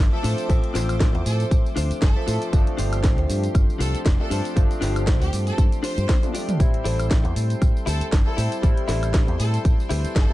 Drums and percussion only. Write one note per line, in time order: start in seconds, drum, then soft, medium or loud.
0.00 tambourine soft
0.24 open hi-hat loud
0.24 tambourine medium
0.38 closed hi-hat medium
0.38 tambourine soft
0.50 kick loud
0.50 closed hi-hat medium
0.50 tambourine soft
0.64 closed hi-hat soft
0.75 snare medium
0.75 open hi-hat loud
0.75 tambourine medium
0.89 closed hi-hat medium
0.89 tambourine soft
0.89 high woodblock medium
1.00 kick loud
1.00 snare loud
1.00 closed hi-hat medium
1.00 tambourine soft
1.15 closed hi-hat soft
1.26 open hi-hat loud
1.26 tambourine medium
1.40 closed hi-hat soft
1.40 tambourine soft
1.51 kick loud
1.51 closed hi-hat medium
1.51 tambourine soft
1.66 tambourine soft
1.77 open hi-hat loud
1.77 tambourine medium
1.91 closed hi-hat medium
1.91 tambourine soft
2.02 kick loud
2.02 snare loud
2.02 closed hi-hat medium
2.02 tambourine soft
2.28 open hi-hat loud
2.28 tambourine medium
2.42 closed hi-hat medium
2.42 tambourine soft
2.53 kick loud
2.53 closed hi-hat medium
2.53 tambourine soft
2.67 closed hi-hat soft
2.79 open hi-hat loud
2.79 tambourine medium
2.93 closed hi-hat medium
2.93 tambourine soft
2.93 high woodblock medium
3.04 kick loud
3.04 snare loud
3.04 closed hi-hat medium
3.04 tambourine soft
3.18 closed hi-hat soft
3.30 open hi-hat loud
3.30 tambourine medium
3.44 closed hi-hat soft
3.44 tambourine soft
3.55 kick loud
3.55 closed hi-hat medium
3.55 tambourine soft
3.55 high woodblock medium
3.70 tambourine soft
3.81 open hi-hat loud
3.81 tambourine medium
3.95 closed hi-hat medium
3.95 tambourine soft
4.06 kick loud
4.06 snare loud
4.06 closed hi-hat medium
4.06 tambourine soft
4.31 open hi-hat loud
4.31 tambourine medium
4.45 closed hi-hat medium
4.45 tambourine soft
4.57 kick loud
4.57 closed hi-hat medium
4.57 tambourine soft
4.71 closed hi-hat soft
4.71 tambourine soft
4.82 snare medium
4.82 open hi-hat loud
4.82 tambourine medium
4.96 closed hi-hat medium
4.96 tambourine soft
4.96 high woodblock medium
5.07 kick loud
5.07 snare loud
5.07 closed hi-hat medium
5.07 tambourine soft
5.22 open hi-hat medium
5.22 tambourine soft
5.33 open hi-hat loud
5.33 tambourine medium
5.47 closed hi-hat medium
5.47 tambourine soft
5.58 kick loud
5.58 closed hi-hat medium
5.58 tambourine soft
5.72 closed hi-hat soft
5.72 tambourine soft
5.84 open hi-hat loud
5.84 tambourine medium
5.98 closed hi-hat medium
5.98 tambourine soft
6.09 kick loud
6.09 snare loud
6.09 closed hi-hat medium
6.09 high tom medium
6.09 tambourine soft
6.23 closed hi-hat soft
6.23 high tom medium
6.23 tambourine soft
6.35 open hi-hat loud
6.35 tambourine medium
6.49 closed hi-hat medium
6.49 mid tom medium
6.49 tambourine soft
6.60 kick loud
6.60 closed hi-hat medium
6.60 tambourine soft
6.74 closed hi-hat soft
6.85 open hi-hat loud
6.85 tambourine medium
6.99 closed hi-hat medium
6.99 tambourine soft
6.99 high woodblock medium
7.11 kick loud
7.11 snare loud
7.11 closed hi-hat medium
7.11 tambourine soft
7.25 closed hi-hat soft
7.36 open hi-hat loud
7.36 tambourine medium
7.50 closed hi-hat medium
7.50 tambourine soft
7.62 kick loud
7.62 closed hi-hat medium
7.62 tambourine soft
7.62 high woodblock medium
7.77 tambourine soft
7.87 open hi-hat loud
7.87 tambourine medium
8.01 closed hi-hat medium
8.01 tambourine soft
8.12 kick loud
8.12 snare loud
8.12 closed hi-hat medium
8.12 tambourine soft
8.38 open hi-hat loud
8.38 tambourine medium
8.52 closed hi-hat medium
8.52 tambourine soft
8.63 kick loud
8.63 closed hi-hat medium
8.63 tambourine soft
8.77 closed hi-hat soft
8.88 snare medium
8.88 open hi-hat loud
8.88 tambourine medium
9.03 closed hi-hat medium
9.03 tambourine soft
9.03 high woodblock medium
9.14 kick loud
9.14 snare loud
9.14 closed hi-hat medium
9.14 tambourine soft
9.28 closed hi-hat soft
9.40 open hi-hat loud
9.40 tambourine medium
9.54 closed hi-hat medium
9.54 tambourine soft
9.65 kick loud
9.65 closed hi-hat medium
9.65 tambourine soft
9.80 tambourine soft
9.90 open hi-hat loud
9.90 tambourine medium
10.05 closed hi-hat medium
10.05 tambourine soft
10.16 kick loud
10.16 snare loud
10.16 closed hi-hat medium
10.16 tambourine soft